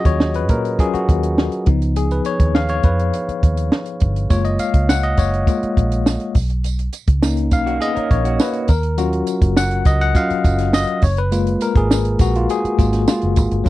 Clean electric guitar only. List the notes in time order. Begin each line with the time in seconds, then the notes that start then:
7.66 A#3 F#4
7.81 B3 G#4
7.95 C#4 A#4
8.25 A#3 F#4